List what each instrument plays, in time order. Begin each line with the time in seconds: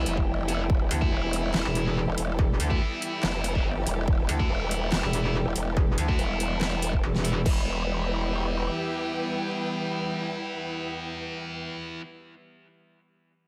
Already playing: distorted electric guitar E3 B3 E4, ambient pad E3 G3 B3 G4, string section E4 G5
0.06 wobble bass F1, closed hi-hat
0.17 kick
0.48 distorted electric guitar E3 B3 E4, closed hi-hat
0.70 wobble bass E1, ambient pad A4, kick
0.91 wobble bass D2, closed hi-hat
1.02 distorted electric guitar E3 B3 E4, kick
1.12 wobble bass E1
1.33 string section G4, closed hi-hat
1.54 wobble bass E1, snare, clap
1.65 wobble bass E1
1.75 closed hi-hat
1.86 distorted electric guitar E3 B3 E4
2.07 wobble bass E1
2.18 wobble bass E1, closed hi-hat
2.39 wobble bass E1, kick
2.60 wobble bass D2, closed hi-hat
2.71 distorted electric guitar E3 B3 E4, kick
3.02 closed hi-hat
3.23 wobble bass F1, snare, clap
3.44 closed hi-hat
3.55 distorted electric guitar E3 B3 E4, kick
3.65 wobble bass G1
3.87 wobble bass E1, closed hi-hat
4.08 wobble bass E1, kick
4.29 wobble bass D2, closed hi-hat
4.40 distorted electric guitar E3 B3 E4, kick
4.50 wobble bass E1
4.71 closed hi-hat
4.92 wobble bass E1, snare, clap
5.03 wobble bass E1
5.13 closed hi-hat
5.24 distorted electric guitar E3 B3 E4
5.45 wobble bass E1
5.56 wobble bass E1, closed hi-hat
5.77 wobble bass E1, kick
5.98 wobble bass D2, closed hi-hat
6.09 distorted electric guitar E3 B3 E4, kick
6.19 wobble bass E1, closed hi-hat
6.40 closed hi-hat
6.61 snare, clap
6.82 closed hi-hat
6.93 kick
7.04 wobble bass E1
7.15 snare
7.24 distorted electric guitar E3 B3 E4, closed hi-hat
7.46 wobble bass E1, distorted electric guitar E3 B3 E4, ambient pad E3 G3 B3 G4, string section E4, kick, crash
7.52 string section B4
7.59 string section G5